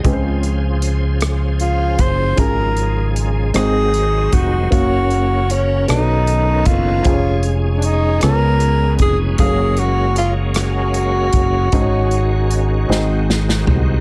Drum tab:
HH |x-x-x-x-x-x-|x-x-x-x-x-x-|x-x-x-x-x-x-|x-x-x-x-x-x-|
SD |------r-----|------r-----|------r-----|------r-----|
FT |------------|------------|------------|------------|
BD |o---------o-|o---------o-|o---------o-|o---------o-|

HH |x-x-x-x-x-x-|x-x-x-------|
SD |------r-----|------o-oo--|
FT |------------|----------o-|
BD |o---------o-|o-----------|